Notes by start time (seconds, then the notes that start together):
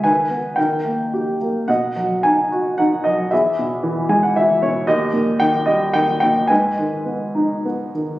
0.04 D#3 B4 G#5
0.31 B3
0.56 D#3 A#4 G5
0.85 A#3
1.14 G4
1.42 A#3
1.68 B2 D#5 F#5
1.96 F#3
2.23 D#4 G#5
2.52 F#4
2.78 D#4 F#5
3.04 F#3 D#5
3.31 E2 G#4 E5
3.59 B2
3.83 E3
4.09 G#3 G#5
4.23 F#5
4.36 E3 E5
4.62 B2 C#5
4.87 D#2 G4 D#5
5.13 A#2
5.40 D#3 G5
5.66 G3 D#5
5.93 D#3 G5
6.20 A#2 G5
6.48 G#2 B4 G#5
6.79 D#3
7.06 B3
7.35 D#4
7.65 B3
7.94 D#3